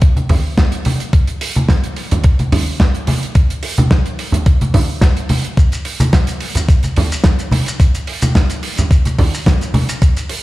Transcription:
0.02 kick, closed hi-hat
0.16 closed hi-hat, high conga
0.29 kick, open hi-hat, low conga
0.58 kick, snare, closed hi-hat
0.72 closed hi-hat
0.85 open hi-hat, high conga
1.00 closed hi-hat
1.13 kick, closed hi-hat
1.27 closed hi-hat
1.41 open hi-hat
1.55 closed hi-hat, high conga
1.69 kick, snare, closed hi-hat
1.84 closed hi-hat
1.96 open hi-hat
2.11 closed hi-hat, low conga
2.24 kick, closed hi-hat
2.39 closed hi-hat, high conga
2.52 open hi-hat, low conga
2.80 kick, snare, closed hi-hat
2.95 closed hi-hat
3.07 open hi-hat, high conga
3.23 closed hi-hat
3.35 kick, closed hi-hat
3.50 closed hi-hat
3.63 open hi-hat
3.78 closed hi-hat, high conga
3.91 kick, snare, closed hi-hat
4.06 closed hi-hat
4.19 open hi-hat
4.32 closed hi-hat, low conga
4.46 kick, closed hi-hat
4.61 closed hi-hat, high conga
4.74 kick, open hi-hat, low conga
5.01 kick, snare, closed hi-hat
5.17 closed hi-hat
5.29 open hi-hat, high conga
5.44 closed hi-hat
5.57 kick, closed hi-hat, shaker
5.72 closed hi-hat, shaker
5.85 open hi-hat
6.00 closed hi-hat, high conga, shaker
6.13 kick, snare, closed hi-hat, shaker
6.27 closed hi-hat, shaker
6.40 open hi-hat
6.55 closed hi-hat, low conga, shaker
6.69 kick, closed hi-hat, shaker
6.83 closed hi-hat, high conga, shaker
6.96 open hi-hat, low conga
7.12 shaker
7.24 kick, snare, closed hi-hat, shaker
7.39 closed hi-hat, shaker
7.51 open hi-hat, high conga
7.66 closed hi-hat, shaker
7.80 kick, closed hi-hat, shaker
7.95 closed hi-hat, shaker
8.07 open hi-hat
8.22 closed hi-hat, high conga, shaker
8.35 kick, snare, closed hi-hat, shaker
8.50 closed hi-hat, shaker
8.63 open hi-hat
8.77 closed hi-hat, low conga, shaker
8.91 kick, closed hi-hat, shaker
9.05 closed hi-hat, high conga, shaker
9.19 kick, open hi-hat, low conga
9.34 shaker
9.46 kick, snare, closed hi-hat, shaker
9.61 closed hi-hat, shaker
9.74 open hi-hat, high conga
9.89 closed hi-hat, shaker
10.02 kick, closed hi-hat, shaker
10.17 closed hi-hat, shaker
10.29 open hi-hat

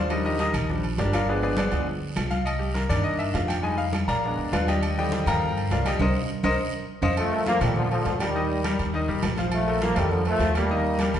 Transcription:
Already playing: D#2
0.10 F3 G3 D4 D#4 G4 A#4 D#5, high conga, low agogo, long guiro, claves
0.25 D#4 G4 A#4 D#5, high conga
0.39 D#4 G4 A#4 D#5, high conga, low timbale, low agogo, short guiro
0.53 A#1, high conga, low conga, low agogo, short guiro, claves
0.69 F3 G3 D4, high conga, low conga, long guiro
0.84 high conga, low agogo
0.98 G1 D4 G4 A#4 D5, low timbale, low agogo, short guiro
1.13 F4 A#4 D5 F5, high conga, low agogo, short guiro, claves
1.27 F3 G#3 B3 D4 G#4 B4 D5, high conga, long guiro
1.43 D4 G#4 B4 D5, high conga
1.57 D4 G#4 B4 D5, high conga, low timbale, low agogo, short guiro, claves
1.71 D2 F3 G#3 B3, high conga, low agogo, short guiro
1.87 high conga, long guiro
2.01 high conga
2.16 C2, high conga, low timbale, low agogo, short guiro, claves
2.30 F5, high conga, low agogo, short guiro
2.45 D#5, high conga, low agogo, long guiro, claves
2.59 G4, high conga
2.74 A#4, high conga, low timbale, low agogo, short guiro
2.89 G2 D#3 A#3 D4 D5, high conga, low conga, low agogo, short guiro, claves
3.04 D#5, high conga, long guiro
3.19 E5, high conga, low agogo
3.34 F2 F5, low timbale, low agogo, short guiro
3.48 G5, high conga, low agogo, short guiro, claves
3.63 G3 G#3 D#4 G#5, high conga, long guiro
3.78 F5, high conga
3.93 high conga, low timbale, low agogo, short guiro, claves
4.07 A#1 A#4 D5 F5 A#5, high conga, low agogo, short guiro
4.24 G#3 B3 D4, high conga, long guiro
4.37 D2, high conga
4.52 D#2 F4 B4 D5 F5, high conga, low timbale, low agogo, short guiro, claves
4.67 G4 D5 D#5 G5, high conga, low agogo, short guiro
4.82 low agogo, long guiro, claves
4.98 D3 F3 G3 G4 D5 D#5 G5, high conga
5.12 high conga, low timbale, low agogo, short guiro
5.26 G2 A#4 F5 G5 A#5, high conga, low conga, low agogo, short guiro, claves
5.41 high conga, low conga, long guiro
5.57 high conga, low agogo
5.71 C2 F4 A#4 D5 F5, high conga, low timbale, low agogo, short guiro
5.85 G4 D5 D#5 G5, high conga, low agogo, short guiro, claves
5.99 C2 A#4 C5 D#5, high conga, high timbale, long guiro, claves
6.43 C2 A#4 C5 D#5, high conga, high timbale, long guiro, claves
7.02 F2 C5 D#5 F5, high conga, high timbale, long guiro, claves
7.17 F3 A3, high conga, low agogo, long guiro, claves
7.32 A3 A4 A#4, high conga
7.46 F3 A#3 F4 F5, high conga, low timbale, low agogo, short guiro
7.61 A#2 D#3 G3 A3 A4 A#4, high conga, low conga, low agogo, short guiro, claves
7.76 D3 F3, high conga, low conga, long guiro
7.91 D3 F3 A3 A4 A#4, high conga, low agogo
8.05 D#2, high conga, low timbale, low agogo, short guiro
8.20 D#3 G3 G4 A#4, high conga, low agogo, short guiro, claves
8.35 D#3 D#4 D#5, high conga, long guiro
8.50 high conga
8.64 G3 G4 A#4, high conga, low timbale, low agogo, short guiro, claves
8.78 D#2, high conga, low agogo, short guiro
8.93 D#3 D#4 D#5, high conga, long guiro
9.08 C2 G3 G4 A#4, high conga
9.23 A#1, high conga, low timbale, low agogo, short guiro, claves
9.37 F3 F4 F5, high conga, low agogo, short guiro
9.52 F3 A3, high conga, low agogo, long guiro, claves
9.67 A3 A4 A#4, high conga
9.81 F3 A#3 F4 F5, high conga, low timbale, low agogo, short guiro
9.96 F2 D#3 G3 A3 A4 A#4, high conga, low conga, low agogo, short guiro, claves
10.11 D3 F3, high conga, long guiro
10.25 F3 A3 A4 A#4, high conga, low agogo
10.39 D#2, high conga, low timbale, low agogo, short guiro
10.55 G3 A#3 G4 A#4, low agogo, short guiro, claves
10.70 D#3 D#4 D#5, high conga, long guiro
10.84 high conga
10.99 G3 G4 A#4, high conga, low timbale, low agogo, short guiro, claves
11.14 D#2, high conga, low agogo, short guiro

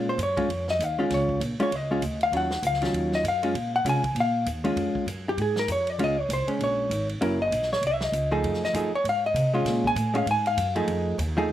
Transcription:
Already playing: A#2 G#3 C#4 F4
0.09 C5
0.18 F#2, hi-hat pedal, ride
0.23 C#5
0.37 G#3 C#4 F4, kick, ride
0.49 F2, ride
0.68 D#5, snare
0.79 D#2, hi-hat pedal, ride
0.84 F5
0.99 G#3 C#4 F4
1.10 C#2, snare, ride
1.14 C#5
1.29 kick
1.40 A#1, hi-hat pedal, ride
1.59 G#3 C#4 F4 C#5, muted upright bass stroke, ride
1.71 C#2, ride
1.76 D#5
1.91 G#3 C#4 F4
2.01 D2, hi-hat pedal, ride
2.21 F5, ride
2.31 D#2 D#3 F#3 C#4 F4, ride
2.37 F#5
2.51 snare
2.62 C#2, hi-hat pedal, ride
2.67 F5
2.73 snare
2.81 D#3 F#3 C#4 F4, snare, ride
2.93 D#2, ride
3.12 D#5, snare
3.23 F#2, hi-hat pedal, ride
3.28 F5
3.43 G#3 C#4 F4, ride
3.54 A#2, ride
3.76 F#5
3.84 C3 G#3 C#4 F4, hi-hat pedal, ride
3.89 G#5
4.04 kick, ride
4.15 A#2, ride
4.20 F5
4.46 D#2, hi-hat pedal, ride
4.64 G#3 C#4 F4, ride
4.76 F2, ride
4.95 muted upright bass stroke, kick
5.06 F#2, hi-hat pedal, ride
5.29 G4
5.37 G#2, ride
5.42 G#4
5.56 A#4, snare
5.68 F2, hi-hat pedal, ride
5.72 C#5
5.87 D5, ride
5.98 C#2 G#3 C#4 F4, ride
6.04 D#5
6.20 C#5
6.29 C2, hi-hat pedal, ride
6.33 C5
6.48 G#3 C#4, ride
6.59 A#1, ride
6.64 C#5
6.90 G#1, hi-hat pedal, ride
7.09 ride
7.21 F#1 F#3 C#4 E4 A#4, ride
7.42 D#5
7.51 A#1, hi-hat pedal, ride
7.62 snare
7.73 C#5, snare
7.81 C2, ride
7.87 E5
8.01 snare
8.05 D#5
8.12 C#2, hi-hat pedal, ride
8.31 F3 A3 D#4 G#4
8.43 F2, ride
8.54 snare
8.64 D#5, snare
8.73 F#2 F3 A3 D#4 G#4, hi-hat pedal, ride
8.92 C#5, muted upright bass stroke
9.04 G#2, ride
9.09 F5
9.26 D#5
9.34 C3, hi-hat pedal, ride
9.54 G#3 C#4 F4
9.65 A#2, snare, ride
9.84 G#5, kick
9.95 A2, hi-hat pedal, ride
10.14 G#3 C#4 F4 F5, ride
10.26 G#2, ride
10.31 G#5
10.46 F5, ride
10.57 F#2, hi-hat pedal, ride
10.75 F3 A3 D#4 G#4, ride
10.87 F2, ride
11.18 D#2, hi-hat pedal, ride
11.37 F3 A3 D#4 G#4
11.49 G#1

